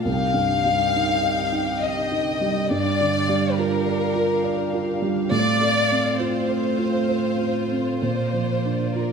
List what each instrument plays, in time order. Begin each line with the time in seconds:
0.04 felt piano C2, string section D#4 G4 G5, violin section F5
0.34 felt piano G2
0.66 felt piano G3
0.95 felt piano D#4
1.23 felt piano D#5
1.52 felt piano D#4
1.79 violin section D#5, felt piano D#5
2.11 felt piano D#4
2.41 felt piano G3
2.69 felt piano G2, string section D4 F5, violin section D5
3.01 felt piano D3
3.29 felt piano G3
3.58 felt piano F4, violin section A#4
3.86 felt piano D5
4.15 felt piano F4
4.44 felt piano D5
4.74 felt piano F4
5.02 felt piano G3
5.31 felt piano A2, string section C4 F4, violin section D5
5.61 felt piano A3
5.91 felt piano C4
6.20 felt piano F4, violin section C5
6.49 felt piano C5
6.78 felt piano F4
7.08 felt piano C5
7.39 felt piano F4
7.71 felt piano C4
8.00 felt piano A#2, string section A#3 D5, violin section C5
8.33 felt piano F3
8.65 felt piano D4
8.94 felt piano F4, violin section A#4